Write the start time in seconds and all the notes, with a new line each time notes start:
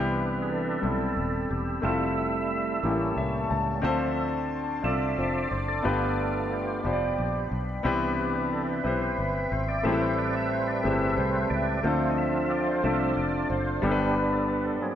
Already playing: C2 C3 E3 G3 B3 C4 D4 E4 G4 B4 G5 B5 E6
0.42 G#4
0.49 A4
0.81 B1 G3 B3 C4 E4 G4
0.91 A4
1.17 D#1
1.49 E1 G4
1.82 F1 G3 A3 C4 E4 F4 A4 E5 A5 E6
2.18 E4
2.82 A1 A2 G3 A#3 C#4 E4 G4 A4 G5 C#6
3.17 C2 E5
3.51 C#2 A5
3.82 D2 D3 F3 C4 D4 F4 A4 C5 D5 E5 C6 D6
4.82 C2 C4 D4 F4 A4 D5 E5
5.18 F1 F3 C4 D5 E5
5.51 F#1 C5
5.68 A4
5.82 G1 G2 A3 B3 D4 F4 G4 B4 G5 B5
6.53 G4
6.83 F1 B3 D4 F4 G4 C5
6.93 D5
7.18 A#1
7.52 B1
7.83 C2 C3 E3 B3 C4 D4 E4 G4 B4 E5 G5
8.19 G4
8.35 B4
8.52 A4
8.69 B4
8.84 B1 C4 E4 G4 B4 C5
9.02 C5
9.18 G1 B4
9.35 B4
9.52 G#1 C5
9.68 D5
9.83 A1 A2 G3 A3 C4 E4 G4 G#4 B4 E5 A5
9.92 A4
10.01 C5
10.18 D5
10.35 E5
10.50 C5
10.67 D5
10.83 G1 A3 C4 E4 G4 G#4 E5
10.93 A4
11.17 C2 C5
11.50 C#2 D5
11.77 D5
11.83 D2 D3 F3 A3 C4 D4 F4 A4 C5 D5
12.10 D#5
12.18 E5
12.50 D5
12.67 C5
12.83 C2 F3 A3 C4 D4 F4 A4 D5 E5
13.17 F1 D5
13.50 F#1 C5
13.82 G1 G2 G3 B3 D4 G4 A4 B4 G5 B5 D6
13.91 B4
14.00 G4
14.16 B4
14.33 A4
14.50 B4
14.65 A4
14.81 F#3 A#3 C4 G#4